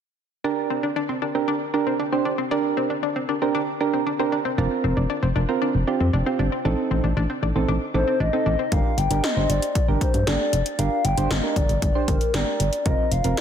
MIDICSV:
0, 0, Header, 1, 6, 480
1, 0, Start_track
1, 0, Key_signature, -2, "minor"
1, 0, Tempo, 517241
1, 412, Time_signature, 4, 2, 24, 8
1, 12444, End_track
2, 0, Start_track
2, 0, Title_t, "Soft synth lead"
2, 0, Program_c, 0, 80
2, 7373, Note_on_c, 0, 72, 82
2, 7595, Note_off_c, 0, 72, 0
2, 7612, Note_on_c, 0, 75, 91
2, 8091, Note_on_c, 0, 77, 98
2, 8105, Note_off_c, 0, 75, 0
2, 8333, Note_on_c, 0, 79, 90
2, 8347, Note_off_c, 0, 77, 0
2, 8571, Note_on_c, 0, 75, 89
2, 8585, Note_off_c, 0, 79, 0
2, 8811, Note_on_c, 0, 74, 84
2, 8825, Note_off_c, 0, 75, 0
2, 9046, Note_off_c, 0, 74, 0
2, 9052, Note_on_c, 0, 74, 85
2, 9160, Note_off_c, 0, 74, 0
2, 9292, Note_on_c, 0, 72, 84
2, 9531, Note_on_c, 0, 74, 93
2, 9545, Note_off_c, 0, 72, 0
2, 10012, Note_on_c, 0, 77, 100
2, 10026, Note_off_c, 0, 74, 0
2, 10252, Note_on_c, 0, 79, 97
2, 10266, Note_off_c, 0, 77, 0
2, 10492, Note_on_c, 0, 75, 92
2, 10506, Note_off_c, 0, 79, 0
2, 10731, Note_on_c, 0, 74, 84
2, 10745, Note_off_c, 0, 75, 0
2, 10967, Note_off_c, 0, 74, 0
2, 10973, Note_on_c, 0, 74, 92
2, 11212, Note_on_c, 0, 70, 82
2, 11226, Note_off_c, 0, 74, 0
2, 11452, Note_on_c, 0, 74, 92
2, 11466, Note_off_c, 0, 70, 0
2, 11928, Note_off_c, 0, 74, 0
2, 11933, Note_on_c, 0, 75, 98
2, 12173, Note_on_c, 0, 77, 98
2, 12187, Note_off_c, 0, 75, 0
2, 12412, Note_on_c, 0, 74, 88
2, 12426, Note_off_c, 0, 77, 0
2, 12444, Note_off_c, 0, 74, 0
2, 12444, End_track
3, 0, Start_track
3, 0, Title_t, "Synth keys"
3, 0, Program_c, 1, 88
3, 412, Note_on_c, 1, 62, 75
3, 412, Note_on_c, 1, 67, 72
3, 412, Note_on_c, 1, 70, 86
3, 782, Note_off_c, 1, 62, 0
3, 782, Note_off_c, 1, 67, 0
3, 782, Note_off_c, 1, 70, 0
3, 1131, Note_on_c, 1, 67, 78
3, 1132, Note_on_c, 1, 70, 81
3, 1193, Note_off_c, 1, 67, 0
3, 1193, Note_off_c, 1, 70, 0
3, 1251, Note_on_c, 1, 62, 77
3, 1251, Note_on_c, 1, 67, 72
3, 1251, Note_on_c, 1, 70, 86
3, 1436, Note_off_c, 1, 62, 0
3, 1436, Note_off_c, 1, 70, 0
3, 1437, Note_off_c, 1, 67, 0
3, 1611, Note_on_c, 1, 62, 77
3, 1611, Note_on_c, 1, 70, 87
3, 1612, Note_on_c, 1, 67, 71
3, 1797, Note_off_c, 1, 62, 0
3, 1797, Note_off_c, 1, 67, 0
3, 1797, Note_off_c, 1, 70, 0
3, 1971, Note_on_c, 1, 62, 75
3, 1971, Note_on_c, 1, 67, 68
3, 1971, Note_on_c, 1, 72, 84
3, 2156, Note_off_c, 1, 62, 0
3, 2156, Note_off_c, 1, 67, 0
3, 2156, Note_off_c, 1, 72, 0
3, 2332, Note_on_c, 1, 62, 76
3, 2332, Note_on_c, 1, 67, 70
3, 2332, Note_on_c, 1, 70, 86
3, 2702, Note_off_c, 1, 62, 0
3, 2702, Note_off_c, 1, 67, 0
3, 2702, Note_off_c, 1, 70, 0
3, 3051, Note_on_c, 1, 67, 76
3, 3051, Note_on_c, 1, 70, 81
3, 3113, Note_off_c, 1, 67, 0
3, 3113, Note_off_c, 1, 70, 0
3, 3172, Note_on_c, 1, 62, 82
3, 3172, Note_on_c, 1, 67, 72
3, 3172, Note_on_c, 1, 70, 86
3, 3357, Note_off_c, 1, 62, 0
3, 3357, Note_off_c, 1, 67, 0
3, 3357, Note_off_c, 1, 70, 0
3, 3532, Note_on_c, 1, 62, 79
3, 3532, Note_on_c, 1, 67, 72
3, 3532, Note_on_c, 1, 70, 86
3, 3717, Note_off_c, 1, 62, 0
3, 3717, Note_off_c, 1, 67, 0
3, 3717, Note_off_c, 1, 70, 0
3, 3891, Note_on_c, 1, 62, 78
3, 3891, Note_on_c, 1, 67, 71
3, 3891, Note_on_c, 1, 70, 85
3, 4077, Note_off_c, 1, 62, 0
3, 4077, Note_off_c, 1, 67, 0
3, 4077, Note_off_c, 1, 70, 0
3, 4252, Note_on_c, 1, 60, 81
3, 4252, Note_on_c, 1, 65, 70
3, 4252, Note_on_c, 1, 70, 88
3, 4622, Note_off_c, 1, 60, 0
3, 4622, Note_off_c, 1, 65, 0
3, 4622, Note_off_c, 1, 70, 0
3, 4972, Note_on_c, 1, 65, 79
3, 4972, Note_on_c, 1, 70, 86
3, 5033, Note_off_c, 1, 70, 0
3, 5034, Note_off_c, 1, 65, 0
3, 5091, Note_on_c, 1, 60, 79
3, 5091, Note_on_c, 1, 70, 87
3, 5092, Note_on_c, 1, 65, 73
3, 5277, Note_off_c, 1, 60, 0
3, 5277, Note_off_c, 1, 65, 0
3, 5277, Note_off_c, 1, 70, 0
3, 5451, Note_on_c, 1, 67, 88
3, 5452, Note_on_c, 1, 60, 79
3, 5452, Note_on_c, 1, 65, 72
3, 5637, Note_off_c, 1, 60, 0
3, 5637, Note_off_c, 1, 65, 0
3, 5637, Note_off_c, 1, 67, 0
3, 5812, Note_on_c, 1, 60, 81
3, 5812, Note_on_c, 1, 65, 68
3, 5812, Note_on_c, 1, 67, 85
3, 5997, Note_off_c, 1, 60, 0
3, 5997, Note_off_c, 1, 65, 0
3, 5997, Note_off_c, 1, 67, 0
3, 6171, Note_on_c, 1, 60, 79
3, 6172, Note_on_c, 1, 63, 73
3, 6172, Note_on_c, 1, 69, 84
3, 6542, Note_off_c, 1, 60, 0
3, 6542, Note_off_c, 1, 63, 0
3, 6542, Note_off_c, 1, 69, 0
3, 6891, Note_on_c, 1, 63, 77
3, 6891, Note_on_c, 1, 69, 85
3, 6953, Note_off_c, 1, 63, 0
3, 6953, Note_off_c, 1, 69, 0
3, 7012, Note_on_c, 1, 60, 81
3, 7012, Note_on_c, 1, 63, 72
3, 7012, Note_on_c, 1, 69, 92
3, 7197, Note_off_c, 1, 60, 0
3, 7197, Note_off_c, 1, 63, 0
3, 7197, Note_off_c, 1, 69, 0
3, 7372, Note_on_c, 1, 60, 80
3, 7372, Note_on_c, 1, 63, 73
3, 7372, Note_on_c, 1, 69, 89
3, 7557, Note_off_c, 1, 60, 0
3, 7557, Note_off_c, 1, 63, 0
3, 7557, Note_off_c, 1, 69, 0
3, 7731, Note_on_c, 1, 69, 86
3, 7732, Note_on_c, 1, 60, 79
3, 7732, Note_on_c, 1, 63, 75
3, 7917, Note_off_c, 1, 60, 0
3, 7917, Note_off_c, 1, 63, 0
3, 7917, Note_off_c, 1, 69, 0
3, 8092, Note_on_c, 1, 62, 67
3, 8092, Note_on_c, 1, 67, 65
3, 8092, Note_on_c, 1, 70, 78
3, 8277, Note_off_c, 1, 62, 0
3, 8277, Note_off_c, 1, 67, 0
3, 8277, Note_off_c, 1, 70, 0
3, 8451, Note_on_c, 1, 62, 71
3, 8452, Note_on_c, 1, 67, 64
3, 8452, Note_on_c, 1, 70, 79
3, 8575, Note_off_c, 1, 62, 0
3, 8575, Note_off_c, 1, 67, 0
3, 8575, Note_off_c, 1, 70, 0
3, 8692, Note_on_c, 1, 62, 67
3, 8692, Note_on_c, 1, 67, 65
3, 8692, Note_on_c, 1, 72, 77
3, 8939, Note_off_c, 1, 62, 0
3, 8939, Note_off_c, 1, 67, 0
3, 8939, Note_off_c, 1, 72, 0
3, 9171, Note_on_c, 1, 67, 65
3, 9172, Note_on_c, 1, 62, 69
3, 9172, Note_on_c, 1, 70, 77
3, 9357, Note_off_c, 1, 62, 0
3, 9357, Note_off_c, 1, 67, 0
3, 9357, Note_off_c, 1, 70, 0
3, 9531, Note_on_c, 1, 62, 71
3, 9531, Note_on_c, 1, 67, 67
3, 9531, Note_on_c, 1, 69, 79
3, 9778, Note_off_c, 1, 62, 0
3, 9778, Note_off_c, 1, 67, 0
3, 9778, Note_off_c, 1, 69, 0
3, 10011, Note_on_c, 1, 62, 69
3, 10011, Note_on_c, 1, 67, 63
3, 10011, Note_on_c, 1, 70, 75
3, 10196, Note_off_c, 1, 62, 0
3, 10196, Note_off_c, 1, 70, 0
3, 10197, Note_off_c, 1, 67, 0
3, 10372, Note_on_c, 1, 62, 72
3, 10372, Note_on_c, 1, 67, 68
3, 10372, Note_on_c, 1, 72, 80
3, 10495, Note_off_c, 1, 62, 0
3, 10495, Note_off_c, 1, 67, 0
3, 10495, Note_off_c, 1, 72, 0
3, 10611, Note_on_c, 1, 62, 70
3, 10611, Note_on_c, 1, 67, 64
3, 10611, Note_on_c, 1, 70, 74
3, 10858, Note_off_c, 1, 62, 0
3, 10858, Note_off_c, 1, 67, 0
3, 10858, Note_off_c, 1, 70, 0
3, 11091, Note_on_c, 1, 62, 72
3, 11091, Note_on_c, 1, 72, 80
3, 11092, Note_on_c, 1, 67, 66
3, 11277, Note_off_c, 1, 62, 0
3, 11277, Note_off_c, 1, 67, 0
3, 11277, Note_off_c, 1, 72, 0
3, 11452, Note_on_c, 1, 62, 70
3, 11452, Note_on_c, 1, 67, 65
3, 11452, Note_on_c, 1, 70, 79
3, 11699, Note_off_c, 1, 62, 0
3, 11699, Note_off_c, 1, 67, 0
3, 11699, Note_off_c, 1, 70, 0
3, 11932, Note_on_c, 1, 60, 69
3, 11932, Note_on_c, 1, 65, 65
3, 11932, Note_on_c, 1, 70, 77
3, 12117, Note_off_c, 1, 60, 0
3, 12117, Note_off_c, 1, 65, 0
3, 12117, Note_off_c, 1, 70, 0
3, 12292, Note_on_c, 1, 60, 71
3, 12292, Note_on_c, 1, 65, 65
3, 12292, Note_on_c, 1, 70, 81
3, 12415, Note_off_c, 1, 60, 0
3, 12415, Note_off_c, 1, 65, 0
3, 12415, Note_off_c, 1, 70, 0
3, 12444, End_track
4, 0, Start_track
4, 0, Title_t, "Synth arpeggio sound"
4, 0, Program_c, 2, 84
4, 411, Note_on_c, 2, 62, 91
4, 584, Note_off_c, 2, 62, 0
4, 651, Note_on_c, 2, 60, 73
4, 738, Note_off_c, 2, 60, 0
4, 772, Note_on_c, 2, 62, 71
4, 858, Note_off_c, 2, 62, 0
4, 892, Note_on_c, 2, 62, 82
4, 978, Note_off_c, 2, 62, 0
4, 1011, Note_on_c, 2, 60, 73
4, 1098, Note_off_c, 2, 60, 0
4, 1132, Note_on_c, 2, 62, 75
4, 1218, Note_off_c, 2, 62, 0
4, 1252, Note_on_c, 2, 60, 69
4, 1338, Note_off_c, 2, 60, 0
4, 1372, Note_on_c, 2, 62, 87
4, 1544, Note_off_c, 2, 62, 0
4, 1612, Note_on_c, 2, 62, 74
4, 1698, Note_off_c, 2, 62, 0
4, 1732, Note_on_c, 2, 60, 69
4, 1818, Note_off_c, 2, 60, 0
4, 1851, Note_on_c, 2, 62, 81
4, 1938, Note_off_c, 2, 62, 0
4, 1971, Note_on_c, 2, 60, 74
4, 2058, Note_off_c, 2, 60, 0
4, 2091, Note_on_c, 2, 62, 81
4, 2177, Note_off_c, 2, 62, 0
4, 2211, Note_on_c, 2, 60, 76
4, 2297, Note_off_c, 2, 60, 0
4, 2331, Note_on_c, 2, 62, 92
4, 2504, Note_off_c, 2, 62, 0
4, 2571, Note_on_c, 2, 60, 75
4, 2658, Note_off_c, 2, 60, 0
4, 2691, Note_on_c, 2, 62, 72
4, 2777, Note_off_c, 2, 62, 0
4, 2810, Note_on_c, 2, 62, 79
4, 2897, Note_off_c, 2, 62, 0
4, 2931, Note_on_c, 2, 60, 77
4, 3018, Note_off_c, 2, 60, 0
4, 3051, Note_on_c, 2, 62, 76
4, 3137, Note_off_c, 2, 62, 0
4, 3171, Note_on_c, 2, 60, 70
4, 3258, Note_off_c, 2, 60, 0
4, 3291, Note_on_c, 2, 62, 86
4, 3464, Note_off_c, 2, 62, 0
4, 3531, Note_on_c, 2, 62, 72
4, 3618, Note_off_c, 2, 62, 0
4, 3652, Note_on_c, 2, 60, 70
4, 3738, Note_off_c, 2, 60, 0
4, 3772, Note_on_c, 2, 62, 82
4, 3858, Note_off_c, 2, 62, 0
4, 3892, Note_on_c, 2, 60, 77
4, 3978, Note_off_c, 2, 60, 0
4, 4011, Note_on_c, 2, 62, 81
4, 4098, Note_off_c, 2, 62, 0
4, 4131, Note_on_c, 2, 60, 74
4, 4217, Note_off_c, 2, 60, 0
4, 4251, Note_on_c, 2, 62, 92
4, 4424, Note_off_c, 2, 62, 0
4, 4491, Note_on_c, 2, 60, 73
4, 4578, Note_off_c, 2, 60, 0
4, 4611, Note_on_c, 2, 62, 72
4, 4697, Note_off_c, 2, 62, 0
4, 4730, Note_on_c, 2, 62, 83
4, 4817, Note_off_c, 2, 62, 0
4, 4850, Note_on_c, 2, 60, 76
4, 4937, Note_off_c, 2, 60, 0
4, 4970, Note_on_c, 2, 62, 75
4, 5057, Note_off_c, 2, 62, 0
4, 5092, Note_on_c, 2, 60, 68
4, 5178, Note_off_c, 2, 60, 0
4, 5211, Note_on_c, 2, 62, 86
4, 5384, Note_off_c, 2, 62, 0
4, 5451, Note_on_c, 2, 62, 74
4, 5538, Note_off_c, 2, 62, 0
4, 5572, Note_on_c, 2, 60, 69
4, 5658, Note_off_c, 2, 60, 0
4, 5692, Note_on_c, 2, 62, 80
4, 5778, Note_off_c, 2, 62, 0
4, 5812, Note_on_c, 2, 60, 74
4, 5898, Note_off_c, 2, 60, 0
4, 5932, Note_on_c, 2, 62, 81
4, 6018, Note_off_c, 2, 62, 0
4, 6052, Note_on_c, 2, 60, 75
4, 6138, Note_off_c, 2, 60, 0
4, 6172, Note_on_c, 2, 62, 91
4, 6344, Note_off_c, 2, 62, 0
4, 6412, Note_on_c, 2, 60, 75
4, 6498, Note_off_c, 2, 60, 0
4, 6532, Note_on_c, 2, 62, 75
4, 6618, Note_off_c, 2, 62, 0
4, 6653, Note_on_c, 2, 62, 81
4, 6738, Note_off_c, 2, 62, 0
4, 6772, Note_on_c, 2, 60, 75
4, 6858, Note_off_c, 2, 60, 0
4, 6892, Note_on_c, 2, 62, 77
4, 6978, Note_off_c, 2, 62, 0
4, 7012, Note_on_c, 2, 60, 71
4, 7098, Note_off_c, 2, 60, 0
4, 7132, Note_on_c, 2, 62, 89
4, 7304, Note_off_c, 2, 62, 0
4, 7372, Note_on_c, 2, 62, 73
4, 7458, Note_off_c, 2, 62, 0
4, 7492, Note_on_c, 2, 60, 71
4, 7578, Note_off_c, 2, 60, 0
4, 7612, Note_on_c, 2, 62, 80
4, 7698, Note_off_c, 2, 62, 0
4, 7732, Note_on_c, 2, 60, 77
4, 7818, Note_off_c, 2, 60, 0
4, 7852, Note_on_c, 2, 62, 81
4, 7938, Note_off_c, 2, 62, 0
4, 7972, Note_on_c, 2, 60, 76
4, 8058, Note_off_c, 2, 60, 0
4, 12444, End_track
5, 0, Start_track
5, 0, Title_t, "FM bass"
5, 0, Program_c, 3, 39
5, 4252, Note_on_c, 3, 29, 99
5, 4345, Note_off_c, 3, 29, 0
5, 4492, Note_on_c, 3, 29, 96
5, 4585, Note_off_c, 3, 29, 0
5, 4613, Note_on_c, 3, 29, 94
5, 4705, Note_off_c, 3, 29, 0
5, 4852, Note_on_c, 3, 29, 96
5, 4945, Note_off_c, 3, 29, 0
5, 4972, Note_on_c, 3, 29, 98
5, 5065, Note_off_c, 3, 29, 0
5, 5333, Note_on_c, 3, 29, 78
5, 5425, Note_off_c, 3, 29, 0
5, 5572, Note_on_c, 3, 41, 97
5, 5665, Note_off_c, 3, 41, 0
5, 5692, Note_on_c, 3, 29, 99
5, 5785, Note_off_c, 3, 29, 0
5, 5932, Note_on_c, 3, 31, 89
5, 6025, Note_off_c, 3, 31, 0
5, 6172, Note_on_c, 3, 33, 102
5, 6265, Note_off_c, 3, 33, 0
5, 6411, Note_on_c, 3, 33, 90
5, 6504, Note_off_c, 3, 33, 0
5, 6531, Note_on_c, 3, 33, 90
5, 6624, Note_off_c, 3, 33, 0
5, 6652, Note_on_c, 3, 33, 106
5, 6745, Note_off_c, 3, 33, 0
5, 6891, Note_on_c, 3, 33, 92
5, 6984, Note_off_c, 3, 33, 0
5, 7012, Note_on_c, 3, 33, 92
5, 7105, Note_off_c, 3, 33, 0
5, 7131, Note_on_c, 3, 33, 101
5, 7225, Note_off_c, 3, 33, 0
5, 7371, Note_on_c, 3, 33, 87
5, 7464, Note_off_c, 3, 33, 0
5, 7611, Note_on_c, 3, 33, 102
5, 7704, Note_off_c, 3, 33, 0
5, 7851, Note_on_c, 3, 33, 100
5, 7944, Note_off_c, 3, 33, 0
5, 8092, Note_on_c, 3, 31, 103
5, 8185, Note_off_c, 3, 31, 0
5, 8331, Note_on_c, 3, 31, 95
5, 8424, Note_off_c, 3, 31, 0
5, 8451, Note_on_c, 3, 31, 99
5, 8544, Note_off_c, 3, 31, 0
5, 8691, Note_on_c, 3, 31, 99
5, 8784, Note_off_c, 3, 31, 0
5, 8811, Note_on_c, 3, 31, 96
5, 8904, Note_off_c, 3, 31, 0
5, 9172, Note_on_c, 3, 31, 88
5, 9265, Note_off_c, 3, 31, 0
5, 9412, Note_on_c, 3, 43, 85
5, 9505, Note_off_c, 3, 43, 0
5, 9533, Note_on_c, 3, 31, 97
5, 9625, Note_off_c, 3, 31, 0
5, 9771, Note_on_c, 3, 29, 92
5, 9865, Note_off_c, 3, 29, 0
5, 10011, Note_on_c, 3, 31, 104
5, 10104, Note_off_c, 3, 31, 0
5, 10251, Note_on_c, 3, 31, 100
5, 10345, Note_off_c, 3, 31, 0
5, 10371, Note_on_c, 3, 31, 102
5, 10465, Note_off_c, 3, 31, 0
5, 10492, Note_on_c, 3, 31, 95
5, 10585, Note_off_c, 3, 31, 0
5, 10730, Note_on_c, 3, 31, 97
5, 10823, Note_off_c, 3, 31, 0
5, 10851, Note_on_c, 3, 31, 93
5, 10944, Note_off_c, 3, 31, 0
5, 10972, Note_on_c, 3, 31, 95
5, 11065, Note_off_c, 3, 31, 0
5, 11211, Note_on_c, 3, 31, 89
5, 11304, Note_off_c, 3, 31, 0
5, 11452, Note_on_c, 3, 31, 100
5, 11545, Note_off_c, 3, 31, 0
5, 11693, Note_on_c, 3, 31, 96
5, 11785, Note_off_c, 3, 31, 0
5, 11932, Note_on_c, 3, 29, 100
5, 12025, Note_off_c, 3, 29, 0
5, 12171, Note_on_c, 3, 29, 97
5, 12264, Note_off_c, 3, 29, 0
5, 12292, Note_on_c, 3, 29, 93
5, 12385, Note_off_c, 3, 29, 0
5, 12444, End_track
6, 0, Start_track
6, 0, Title_t, "Drums"
6, 8091, Note_on_c, 9, 42, 62
6, 8092, Note_on_c, 9, 36, 116
6, 8184, Note_off_c, 9, 36, 0
6, 8184, Note_off_c, 9, 42, 0
6, 8332, Note_on_c, 9, 42, 61
6, 8425, Note_off_c, 9, 42, 0
6, 8450, Note_on_c, 9, 42, 52
6, 8543, Note_off_c, 9, 42, 0
6, 8572, Note_on_c, 9, 38, 102
6, 8572, Note_on_c, 9, 42, 57
6, 8665, Note_off_c, 9, 38, 0
6, 8665, Note_off_c, 9, 42, 0
6, 8813, Note_on_c, 9, 42, 65
6, 8905, Note_off_c, 9, 42, 0
6, 8931, Note_on_c, 9, 42, 52
6, 9024, Note_off_c, 9, 42, 0
6, 9051, Note_on_c, 9, 36, 89
6, 9052, Note_on_c, 9, 42, 75
6, 9144, Note_off_c, 9, 36, 0
6, 9145, Note_off_c, 9, 42, 0
6, 9291, Note_on_c, 9, 36, 86
6, 9292, Note_on_c, 9, 42, 75
6, 9383, Note_off_c, 9, 36, 0
6, 9385, Note_off_c, 9, 42, 0
6, 9411, Note_on_c, 9, 42, 45
6, 9503, Note_off_c, 9, 42, 0
6, 9532, Note_on_c, 9, 38, 113
6, 9532, Note_on_c, 9, 42, 63
6, 9625, Note_off_c, 9, 38, 0
6, 9625, Note_off_c, 9, 42, 0
6, 9772, Note_on_c, 9, 42, 71
6, 9865, Note_off_c, 9, 42, 0
6, 9891, Note_on_c, 9, 42, 49
6, 9984, Note_off_c, 9, 42, 0
6, 10011, Note_on_c, 9, 42, 61
6, 10104, Note_off_c, 9, 42, 0
6, 10251, Note_on_c, 9, 42, 64
6, 10344, Note_off_c, 9, 42, 0
6, 10371, Note_on_c, 9, 42, 51
6, 10463, Note_off_c, 9, 42, 0
6, 10492, Note_on_c, 9, 38, 109
6, 10492, Note_on_c, 9, 42, 58
6, 10585, Note_off_c, 9, 38, 0
6, 10585, Note_off_c, 9, 42, 0
6, 10730, Note_on_c, 9, 36, 86
6, 10732, Note_on_c, 9, 42, 66
6, 10823, Note_off_c, 9, 36, 0
6, 10825, Note_off_c, 9, 42, 0
6, 10851, Note_on_c, 9, 42, 50
6, 10944, Note_off_c, 9, 42, 0
6, 10971, Note_on_c, 9, 36, 88
6, 10972, Note_on_c, 9, 42, 78
6, 11064, Note_off_c, 9, 36, 0
6, 11065, Note_off_c, 9, 42, 0
6, 11211, Note_on_c, 9, 36, 87
6, 11211, Note_on_c, 9, 42, 77
6, 11303, Note_off_c, 9, 36, 0
6, 11304, Note_off_c, 9, 42, 0
6, 11330, Note_on_c, 9, 42, 47
6, 11423, Note_off_c, 9, 42, 0
6, 11451, Note_on_c, 9, 38, 113
6, 11451, Note_on_c, 9, 42, 63
6, 11544, Note_off_c, 9, 38, 0
6, 11544, Note_off_c, 9, 42, 0
6, 11692, Note_on_c, 9, 42, 72
6, 11785, Note_off_c, 9, 42, 0
6, 11810, Note_on_c, 9, 42, 49
6, 11903, Note_off_c, 9, 42, 0
6, 11931, Note_on_c, 9, 42, 59
6, 11932, Note_on_c, 9, 36, 116
6, 12024, Note_off_c, 9, 42, 0
6, 12025, Note_off_c, 9, 36, 0
6, 12171, Note_on_c, 9, 42, 65
6, 12264, Note_off_c, 9, 42, 0
6, 12289, Note_on_c, 9, 42, 49
6, 12382, Note_off_c, 9, 42, 0
6, 12411, Note_on_c, 9, 38, 110
6, 12411, Note_on_c, 9, 42, 57
6, 12444, Note_off_c, 9, 38, 0
6, 12444, Note_off_c, 9, 42, 0
6, 12444, End_track
0, 0, End_of_file